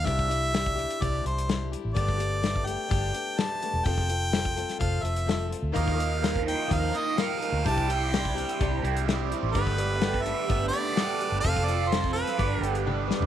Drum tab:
HH |x-x-x-xxx-xxx-x-|x-x-x-x-x-x-x-x-|x-x-x-xxx-xxx-x-|x-x-x-x-x-x-x-x-|
SD |----o-------o---|----o-------o---|----o--o----o---|----o-------o---|
T1 |----------------|----------------|----------------|----------------|
FT |----------------|----------------|----------------|----------------|
BD |oo---o--o-------|oo---o--o-------|oo---o--o-------|oo---o--o-------|

HH |x-x-x-xxx-xxx-x-|x-x-x-x-x-x-x-x-|x-x-x-xxx-xx----|
SD |----o-------o---|----o-------o---|----o--o------o-|
T1 |----------------|----------------|------------o---|
FT |----------------|----------------|---------------o|
BD |oo---o--o-------|oo---o--o-------|oo---o--o-------|